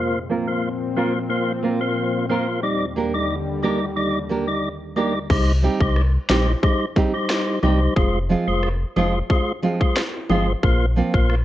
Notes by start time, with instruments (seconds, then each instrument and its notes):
Already playing: analog synth pad A#2 F3 C4, tonewheel organ A#3 F4 C5
0.29 nylon-string guitar A#3 C4 F4 A#4
0.47 tonewheel organ A#3 F4 C5
0.96 nylon-string guitar A#3 C4 F4 A#4, tonewheel organ A#3 F4 C5
1.30 tonewheel organ A#3 F4 C5
1.63 nylon-string guitar A#3 C4 F4 A#4
1.81 tonewheel organ A#3 F4 C5
2.29 nylon-string guitar A#3 C4 F4 A#4, tonewheel organ A#3 F4 C5
2.63 analog synth pad D#2 D3 G3, tonewheel organ G3 D#4 D5
2.96 nylon-string guitar A#3 D4 G4 A#4
3.14 tonewheel organ G3 D#4 D5
3.62 tonewheel organ G3 D#4 D5, nylon-string guitar A#3 D4 G4 A#4
3.96 tonewheel organ G3 D#4 D5
4.29 nylon-string guitar A#3 D4 G4 A#4
4.47 tonewheel organ G3 D#4 D5
4.96 tonewheel organ G3 D#4 D5, nylon-string guitar A#3 D4 G4 A#4
5.30 sub bass C2, tonewheel organ G3 D#4 C5, kick, crash, high bongo
5.63 nylon-string guitar G3 C4 D#4 G4
5.81 sub bass C2, tonewheel organ G3 D#4 C5, kick
5.96 cross-stick
6.29 sub bass A#1, nylon-string guitar G3 C4 D#4 G4, tonewheel organ G3 D#4 C5, finger snap, snare, low bongo
6.63 tonewheel organ G3 D#4 C5, kick, high bongo
6.96 nylon-string guitar G3 C4 D#4 G4, kick, high bongo
7.14 tonewheel organ G3 D#4 C5
7.29 finger snap, cross-stick, snare
7.63 sub bass C2, nylon-string guitar G3 C4 D#4 G4, tonewheel organ G3 D#4 C5, low bongo
7.96 sub bass F1, tonewheel organ G#3 F4 C5, kick, high bongo
8.29 nylon-string guitar F3 G#3 C4 F4
8.47 sub bass F1, tonewheel organ G#3 F4 C5
8.63 cross-stick
8.96 sub bass F1, nylon-string guitar F3 G#3 C4 F4, tonewheel organ G#3 F4 C5, low bongo
9.30 tonewheel organ G#3 F4 C5, kick, high bongo
9.63 nylon-string guitar F3 G#3 C4 F4, high bongo
9.80 tonewheel organ G#3 F4 C5, kick
9.96 finger snap, cross-stick, snare
10.29 sub bass G1, nylon-string guitar F3 G#3 C4 F4, tonewheel organ G#3 F4 C5, low bongo
10.63 sub bass A#1, tonewheel organ A#3 F4 C5, kick, high bongo
10.96 nylon-string guitar F3 A#3 C4 F4
11.14 sub bass A#1, tonewheel organ A#3 F4 C5, kick
11.30 cross-stick